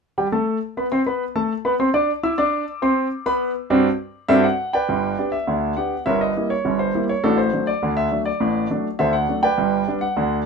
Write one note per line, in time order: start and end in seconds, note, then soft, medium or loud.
0.18 0.26 G3 medium
0.18 0.26 G4 medium
0.18 0.26 G5 medium
0.32 0.57 A3 medium
0.32 0.57 A4 medium
0.32 0.57 A5 medium
0.77 0.85 B3 medium
0.77 0.85 B4 medium
0.77 0.85 B5 medium
0.92 1.00 C4 medium
0.92 1.00 C5 medium
0.92 1.00 C6 medium
1.06 1.23 B3 medium
1.06 1.23 B4 medium
1.06 1.23 B5 medium
1.36 1.52 A3 medium
1.36 1.52 A4 medium
1.36 1.52 A5 medium
1.65 1.73 B3 medium
1.65 1.73 B4 medium
1.65 1.73 B5 medium
1.80 1.88 C4 medium
1.80 1.88 C5 medium
1.80 1.88 C6 medium
1.94 2.10 D4 medium
1.94 2.10 D5 medium
1.94 2.10 D6 medium
2.23 2.31 E4 medium
2.23 2.32 E5 medium
2.23 2.32 E6 medium
2.38 2.62 D4 medium
2.38 2.62 D5 medium
2.38 2.62 D6 medium
2.82 3.06 C4 medium
2.82 3.06 C5 medium
2.82 3.07 C6 medium
3.26 3.50 B3 medium
3.26 3.50 B4 medium
3.26 3.50 B5 medium
3.70 3.86 G2 medium
3.70 3.87 C4 medium
3.70 3.87 D4 medium
3.70 3.86 F#4 medium
4.28 4.45 G2 medium
4.28 4.45 C4 medium
4.28 4.45 D4 medium
4.28 4.45 F#4 medium
4.28 4.43 A4 medium
4.28 4.43 C5 medium
4.28 4.44 E5 loud
4.44 4.72 F#5 medium
4.73 5.29 B4 medium
4.73 5.29 D5 medium
4.73 5.21 G5 medium
4.89 5.14 G1 medium
4.89 5.14 G2 medium
5.18 5.34 B3 soft
5.18 5.35 D4 soft
5.18 5.35 G4 soft
5.32 5.74 E5 medium
5.47 5.72 D2 medium
5.47 5.72 D3 medium
5.77 5.93 B3 soft
5.77 5.93 D4 soft
5.77 5.94 G4 soft
5.77 6.00 F#5 medium
6.06 6.31 G1 medium
6.06 6.31 G2 medium
6.06 6.20 A#4 medium
6.06 6.20 C#5 medium
6.06 6.21 E5 medium
6.21 6.49 D#5 medium
6.36 6.52 G3 soft
6.36 6.53 A#3 soft
6.36 6.53 E4 soft
6.50 6.78 C#5 medium
6.65 6.90 G1 medium
6.65 6.90 G2 medium
6.79 7.03 C5 medium
6.95 7.11 G3 soft
6.95 7.11 A#3 soft
6.95 7.11 E4 soft
7.09 7.24 C#5 medium
7.24 7.49 A1 medium
7.24 7.49 A2 medium
7.24 7.38 D4 medium
7.24 7.38 F#4 medium
7.24 7.38 A4 medium
7.38 7.66 C5 medium
7.53 7.69 F#3 soft
7.53 7.69 A3 soft
7.53 7.69 D4 soft
7.67 7.91 D5 medium
7.82 8.07 D2 medium
7.82 8.07 D3 medium
7.97 8.20 E5 medium
8.12 8.28 F#3 soft
8.12 8.28 A3 soft
8.12 8.28 D4 soft
8.26 8.67 D5 medium
8.40 8.65 A1 medium
8.40 8.65 A2 medium
8.70 8.86 F#3 soft
8.70 8.87 A3 soft
8.70 8.87 D4 medium
8.99 9.24 D2 medium
8.99 9.24 D3 medium
8.99 9.13 A4 medium
8.99 9.13 C5 medium
8.99 9.14 E5 medium
9.13 9.37 F#5 medium
9.29 9.45 F#3 soft
9.29 9.45 A3 soft
9.29 9.45 D4 soft
9.43 9.98 B4 medium
9.43 9.98 D5 medium
9.43 9.90 G5 medium
9.58 9.83 G1 medium
9.58 9.83 G2 medium
9.87 10.03 G3 soft
9.87 10.04 B3 soft
9.87 10.04 D4 medium
10.01 10.36 F#5 medium
10.17 10.41 D2 medium
10.17 10.41 D3 medium